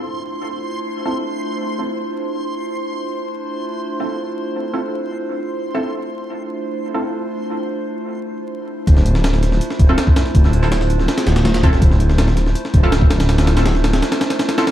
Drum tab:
HH |----------------|----------------|----------------|----------------|
SD |----------------|----------------|----------------|----------------|
BD |----------------|----------------|----------------|----------------|

HH |----------------|----------------|x-x-x-x-x-x-x-x-|x-x-x-x-xxxxxxx-|
SD |----------------|----------------|-o-ooooo-o--o-oo|-o-ooo-ooooooo-o|
BD |----------------|----------------|o---------o--o--|o-------------o-|

HH |x-x-x-x-x-x-x-xx|xxxxx-xxxxxxxxxx|
SD |-o-ooooo-o--o-oo|oooooooooooooooo|
BD |o---------o--o--|----------------|